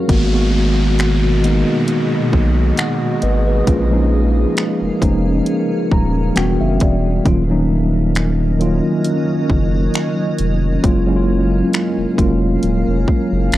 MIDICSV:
0, 0, Header, 1, 6, 480
1, 0, Start_track
1, 0, Tempo, 895522
1, 49, Time_signature, 4, 2, 24, 8
1, 7277, End_track
2, 0, Start_track
2, 0, Title_t, "Ambient pad"
2, 0, Program_c, 0, 92
2, 49, Note_on_c, 0, 47, 82
2, 49, Note_on_c, 0, 66, 74
2, 49, Note_on_c, 0, 68, 74
2, 49, Note_on_c, 0, 75, 92
2, 1949, Note_off_c, 0, 47, 0
2, 1949, Note_off_c, 0, 66, 0
2, 1949, Note_off_c, 0, 75, 0
2, 1967, Note_on_c, 0, 77, 91
2, 1968, Note_on_c, 0, 61, 82
2, 1968, Note_on_c, 0, 70, 77
2, 3387, Note_off_c, 0, 68, 0
2, 3394, Note_off_c, 0, 61, 0
2, 3394, Note_off_c, 0, 70, 0
2, 3394, Note_off_c, 0, 77, 0
2, 3888, Note_on_c, 0, 61, 85
2, 3889, Note_on_c, 0, 70, 74
2, 3889, Note_on_c, 0, 75, 96
2, 3890, Note_on_c, 0, 54, 77
2, 5789, Note_off_c, 0, 75, 0
2, 5790, Note_off_c, 0, 54, 0
2, 5790, Note_off_c, 0, 70, 0
2, 5807, Note_on_c, 0, 54, 78
2, 5807, Note_on_c, 0, 77, 92
2, 5808, Note_on_c, 0, 70, 76
2, 7277, Note_off_c, 0, 54, 0
2, 7277, Note_off_c, 0, 61, 0
2, 7277, Note_off_c, 0, 70, 0
2, 7277, Note_off_c, 0, 77, 0
2, 7277, End_track
3, 0, Start_track
3, 0, Title_t, "Tine electric piano"
3, 0, Program_c, 1, 4
3, 0, Control_c, 1, 64, 127
3, 42, Note_on_c, 1, 51, 81
3, 46, Note_on_c, 1, 56, 78
3, 50, Note_on_c, 1, 58, 78
3, 53, Note_on_c, 1, 59, 77
3, 55, Control_c, 1, 64, 0
3, 57, Note_on_c, 1, 66, 88
3, 134, Note_off_c, 1, 51, 0
3, 136, Note_off_c, 1, 56, 0
3, 138, Note_off_c, 1, 58, 0
3, 139, Note_off_c, 1, 59, 0
3, 142, Note_off_c, 1, 66, 0
3, 143, Control_c, 1, 64, 127
3, 172, Note_on_c, 1, 51, 90
3, 176, Note_on_c, 1, 56, 81
3, 180, Note_on_c, 1, 58, 83
3, 184, Note_on_c, 1, 59, 84
3, 188, Note_on_c, 1, 66, 97
3, 579, Note_off_c, 1, 51, 0
3, 581, Note_off_c, 1, 56, 0
3, 583, Note_off_c, 1, 58, 0
3, 586, Note_off_c, 1, 59, 0
3, 587, Note_off_c, 1, 66, 0
3, 762, Note_on_c, 1, 51, 88
3, 766, Note_on_c, 1, 56, 78
3, 770, Note_on_c, 1, 58, 76
3, 774, Note_on_c, 1, 59, 80
3, 778, Note_on_c, 1, 63, 99
3, 1426, Note_off_c, 1, 51, 0
3, 1428, Note_off_c, 1, 56, 0
3, 1430, Note_off_c, 1, 58, 0
3, 1432, Note_off_c, 1, 59, 0
3, 1434, Note_off_c, 1, 63, 0
3, 1490, Note_on_c, 1, 78, 59
3, 1494, Note_on_c, 1, 75, 50
3, 1718, Note_off_c, 1, 78, 0
3, 1719, Note_off_c, 1, 75, 0
3, 1730, Note_on_c, 1, 75, 72
3, 1733, Note_on_c, 1, 71, 62
3, 1852, Note_off_c, 1, 75, 0
3, 1854, Note_off_c, 1, 71, 0
3, 1861, Note_on_c, 1, 71, 68
3, 1864, Note_on_c, 1, 68, 55
3, 1961, Note_on_c, 1, 53, 82
3, 1965, Note_on_c, 1, 56, 77
3, 1970, Note_on_c, 1, 58, 76
3, 1973, Note_on_c, 1, 61, 75
3, 1976, Control_c, 1, 64, 0
3, 1977, Note_on_c, 1, 65, 89
3, 2053, Note_off_c, 1, 53, 0
3, 2056, Note_off_c, 1, 56, 0
3, 2058, Note_off_c, 1, 58, 0
3, 2059, Note_off_c, 1, 61, 0
3, 2061, Note_off_c, 1, 65, 0
3, 2073, Control_c, 1, 64, 127
3, 2088, Note_off_c, 1, 71, 0
3, 2089, Note_off_c, 1, 68, 0
3, 2092, Note_on_c, 1, 53, 93
3, 2095, Note_on_c, 1, 56, 79
3, 2099, Note_on_c, 1, 58, 82
3, 2103, Note_on_c, 1, 61, 82
3, 2107, Note_on_c, 1, 63, 96
3, 2499, Note_off_c, 1, 53, 0
3, 2501, Note_off_c, 1, 56, 0
3, 2503, Note_off_c, 1, 58, 0
3, 2505, Note_off_c, 1, 61, 0
3, 2507, Note_off_c, 1, 63, 0
3, 2682, Note_on_c, 1, 53, 89
3, 2686, Note_on_c, 1, 56, 76
3, 2690, Note_on_c, 1, 58, 80
3, 2694, Note_on_c, 1, 61, 81
3, 2698, Note_on_c, 1, 63, 98
3, 3171, Note_on_c, 1, 82, 69
3, 3346, Note_off_c, 1, 53, 0
3, 3349, Note_off_c, 1, 56, 0
3, 3350, Note_off_c, 1, 58, 0
3, 3353, Note_off_c, 1, 61, 0
3, 3354, Note_off_c, 1, 63, 0
3, 3393, Note_off_c, 1, 82, 0
3, 3402, Note_on_c, 1, 52, 86
3, 3406, Note_on_c, 1, 55, 83
3, 3410, Note_on_c, 1, 59, 80
3, 3411, Note_on_c, 1, 79, 69
3, 3414, Note_on_c, 1, 62, 81
3, 3415, Control_c, 1, 64, 0
3, 3418, Note_on_c, 1, 66, 99
3, 3502, Control_c, 1, 64, 127
3, 3530, Note_off_c, 1, 79, 0
3, 3541, Note_on_c, 1, 76, 66
3, 3642, Note_off_c, 1, 76, 0
3, 3651, Note_on_c, 1, 74, 71
3, 3797, Note_off_c, 1, 52, 0
3, 3799, Note_off_c, 1, 55, 0
3, 3801, Note_off_c, 1, 59, 0
3, 3803, Note_off_c, 1, 62, 0
3, 3805, Note_off_c, 1, 66, 0
3, 3873, Note_off_c, 1, 74, 0
3, 3882, Note_on_c, 1, 51, 85
3, 3885, Note_on_c, 1, 54, 81
3, 3890, Note_on_c, 1, 58, 77
3, 3894, Note_on_c, 1, 61, 73
3, 3896, Control_c, 1, 64, 0
3, 3898, Note_on_c, 1, 65, 97
3, 3974, Note_off_c, 1, 51, 0
3, 3976, Note_off_c, 1, 54, 0
3, 3978, Note_off_c, 1, 58, 0
3, 3980, Note_off_c, 1, 61, 0
3, 3982, Note_off_c, 1, 65, 0
3, 3999, Control_c, 1, 64, 127
3, 4011, Note_on_c, 1, 51, 93
3, 4015, Note_on_c, 1, 54, 82
3, 4019, Note_on_c, 1, 58, 80
3, 4024, Note_on_c, 1, 61, 84
3, 4028, Note_on_c, 1, 63, 101
3, 4419, Note_off_c, 1, 51, 0
3, 4421, Note_off_c, 1, 54, 0
3, 4423, Note_off_c, 1, 58, 0
3, 4425, Note_off_c, 1, 61, 0
3, 4427, Note_off_c, 1, 63, 0
3, 4602, Note_on_c, 1, 51, 90
3, 4606, Note_on_c, 1, 54, 80
3, 4609, Note_on_c, 1, 58, 80
3, 4614, Note_on_c, 1, 61, 78
3, 4618, Note_on_c, 1, 65, 100
3, 5266, Note_off_c, 1, 51, 0
3, 5268, Note_off_c, 1, 54, 0
3, 5270, Note_off_c, 1, 58, 0
3, 5272, Note_off_c, 1, 61, 0
3, 5274, Note_off_c, 1, 65, 0
3, 5803, Note_on_c, 1, 54, 80
3, 5807, Note_on_c, 1, 56, 75
3, 5811, Note_on_c, 1, 58, 76
3, 5815, Note_on_c, 1, 61, 78
3, 5816, Control_c, 1, 64, 0
3, 5819, Note_on_c, 1, 65, 98
3, 5894, Note_off_c, 1, 54, 0
3, 5894, Control_c, 1, 64, 127
3, 5896, Note_off_c, 1, 56, 0
3, 5898, Note_off_c, 1, 58, 0
3, 5900, Note_off_c, 1, 61, 0
3, 5902, Note_off_c, 1, 65, 0
3, 5931, Note_on_c, 1, 54, 88
3, 5936, Note_on_c, 1, 56, 81
3, 5940, Note_on_c, 1, 58, 83
3, 5944, Note_on_c, 1, 61, 81
3, 5948, Note_on_c, 1, 64, 78
3, 5975, Note_off_c, 1, 64, 0
3, 5983, Note_on_c, 1, 65, 100
3, 6339, Note_off_c, 1, 54, 0
3, 6341, Note_off_c, 1, 56, 0
3, 6343, Note_off_c, 1, 58, 0
3, 6345, Note_off_c, 1, 61, 0
3, 6365, Note_off_c, 1, 65, 0
3, 6521, Note_on_c, 1, 54, 85
3, 6525, Note_on_c, 1, 56, 77
3, 6529, Note_on_c, 1, 58, 79
3, 6533, Note_on_c, 1, 61, 77
3, 6537, Note_on_c, 1, 65, 97
3, 7186, Note_off_c, 1, 54, 0
3, 7188, Note_off_c, 1, 56, 0
3, 7190, Note_off_c, 1, 58, 0
3, 7192, Note_off_c, 1, 61, 0
3, 7194, Note_off_c, 1, 65, 0
3, 7277, End_track
4, 0, Start_track
4, 0, Title_t, "Sub bass"
4, 0, Program_c, 2, 38
4, 50, Note_on_c, 2, 32, 108
4, 877, Note_off_c, 2, 32, 0
4, 1251, Note_on_c, 2, 35, 89
4, 1460, Note_off_c, 2, 35, 0
4, 1732, Note_on_c, 2, 32, 90
4, 1941, Note_off_c, 2, 32, 0
4, 1970, Note_on_c, 2, 34, 100
4, 2390, Note_off_c, 2, 34, 0
4, 2582, Note_on_c, 2, 29, 49
4, 2625, Note_off_c, 2, 29, 0
4, 2691, Note_on_c, 2, 29, 94
4, 2900, Note_off_c, 2, 29, 0
4, 3171, Note_on_c, 2, 27, 94
4, 3380, Note_off_c, 2, 27, 0
4, 3413, Note_on_c, 2, 28, 102
4, 3525, Note_off_c, 2, 28, 0
4, 3544, Note_on_c, 2, 30, 93
4, 3638, Note_off_c, 2, 30, 0
4, 3653, Note_on_c, 2, 28, 90
4, 3861, Note_off_c, 2, 28, 0
4, 3890, Note_on_c, 2, 27, 107
4, 4718, Note_off_c, 2, 27, 0
4, 5092, Note_on_c, 2, 30, 82
4, 5301, Note_off_c, 2, 30, 0
4, 5572, Note_on_c, 2, 29, 87
4, 5781, Note_off_c, 2, 29, 0
4, 5810, Note_on_c, 2, 30, 99
4, 6230, Note_off_c, 2, 30, 0
4, 6421, Note_on_c, 2, 29, 46
4, 6464, Note_off_c, 2, 29, 0
4, 6531, Note_on_c, 2, 29, 88
4, 6740, Note_off_c, 2, 29, 0
4, 6771, Note_on_c, 2, 27, 92
4, 6883, Note_off_c, 2, 27, 0
4, 6901, Note_on_c, 2, 29, 86
4, 6997, Note_off_c, 2, 29, 0
4, 7141, Note_on_c, 2, 30, 89
4, 7237, Note_off_c, 2, 30, 0
4, 7251, Note_on_c, 2, 32, 92
4, 7277, Note_off_c, 2, 32, 0
4, 7277, End_track
5, 0, Start_track
5, 0, Title_t, "Downlifter"
5, 0, Program_c, 3, 103
5, 48, Note_on_c, 3, 60, 76
5, 3888, Note_off_c, 3, 60, 0
5, 7277, End_track
6, 0, Start_track
6, 0, Title_t, "Drums"
6, 49, Note_on_c, 9, 36, 110
6, 49, Note_on_c, 9, 42, 71
6, 102, Note_off_c, 9, 36, 0
6, 102, Note_off_c, 9, 42, 0
6, 530, Note_on_c, 9, 42, 60
6, 535, Note_on_c, 9, 26, 101
6, 583, Note_off_c, 9, 42, 0
6, 588, Note_off_c, 9, 26, 0
6, 772, Note_on_c, 9, 42, 62
6, 826, Note_off_c, 9, 42, 0
6, 1007, Note_on_c, 9, 42, 69
6, 1060, Note_off_c, 9, 42, 0
6, 1249, Note_on_c, 9, 36, 81
6, 1303, Note_off_c, 9, 36, 0
6, 1487, Note_on_c, 9, 42, 57
6, 1495, Note_on_c, 9, 26, 112
6, 1541, Note_off_c, 9, 42, 0
6, 1549, Note_off_c, 9, 26, 0
6, 1726, Note_on_c, 9, 42, 74
6, 1780, Note_off_c, 9, 42, 0
6, 1968, Note_on_c, 9, 42, 74
6, 1969, Note_on_c, 9, 36, 110
6, 2022, Note_off_c, 9, 36, 0
6, 2022, Note_off_c, 9, 42, 0
6, 2449, Note_on_c, 9, 42, 61
6, 2455, Note_on_c, 9, 26, 99
6, 2503, Note_off_c, 9, 42, 0
6, 2508, Note_off_c, 9, 26, 0
6, 2690, Note_on_c, 9, 36, 91
6, 2693, Note_on_c, 9, 42, 64
6, 2743, Note_off_c, 9, 36, 0
6, 2746, Note_off_c, 9, 42, 0
6, 2928, Note_on_c, 9, 42, 69
6, 2981, Note_off_c, 9, 42, 0
6, 3170, Note_on_c, 9, 36, 85
6, 3223, Note_off_c, 9, 36, 0
6, 3408, Note_on_c, 9, 42, 58
6, 3416, Note_on_c, 9, 26, 117
6, 3461, Note_off_c, 9, 42, 0
6, 3469, Note_off_c, 9, 26, 0
6, 3646, Note_on_c, 9, 42, 69
6, 3651, Note_on_c, 9, 36, 87
6, 3700, Note_off_c, 9, 42, 0
6, 3705, Note_off_c, 9, 36, 0
6, 3889, Note_on_c, 9, 36, 109
6, 3889, Note_on_c, 9, 42, 70
6, 3942, Note_off_c, 9, 42, 0
6, 3943, Note_off_c, 9, 36, 0
6, 4370, Note_on_c, 9, 42, 62
6, 4375, Note_on_c, 9, 26, 92
6, 4423, Note_off_c, 9, 42, 0
6, 4428, Note_off_c, 9, 26, 0
6, 4613, Note_on_c, 9, 42, 57
6, 4667, Note_off_c, 9, 42, 0
6, 4848, Note_on_c, 9, 42, 66
6, 4902, Note_off_c, 9, 42, 0
6, 5090, Note_on_c, 9, 36, 82
6, 5144, Note_off_c, 9, 36, 0
6, 5328, Note_on_c, 9, 42, 60
6, 5336, Note_on_c, 9, 26, 114
6, 5381, Note_off_c, 9, 42, 0
6, 5389, Note_off_c, 9, 26, 0
6, 5566, Note_on_c, 9, 42, 69
6, 5620, Note_off_c, 9, 42, 0
6, 5809, Note_on_c, 9, 36, 110
6, 5809, Note_on_c, 9, 42, 67
6, 5862, Note_off_c, 9, 36, 0
6, 5863, Note_off_c, 9, 42, 0
6, 6290, Note_on_c, 9, 42, 60
6, 6295, Note_on_c, 9, 26, 98
6, 6343, Note_off_c, 9, 42, 0
6, 6348, Note_off_c, 9, 26, 0
6, 6530, Note_on_c, 9, 36, 86
6, 6533, Note_on_c, 9, 42, 62
6, 6583, Note_off_c, 9, 36, 0
6, 6587, Note_off_c, 9, 42, 0
6, 6768, Note_on_c, 9, 42, 66
6, 6822, Note_off_c, 9, 42, 0
6, 7010, Note_on_c, 9, 36, 85
6, 7063, Note_off_c, 9, 36, 0
6, 7248, Note_on_c, 9, 42, 61
6, 7255, Note_on_c, 9, 26, 116
6, 7277, Note_off_c, 9, 26, 0
6, 7277, Note_off_c, 9, 42, 0
6, 7277, End_track
0, 0, End_of_file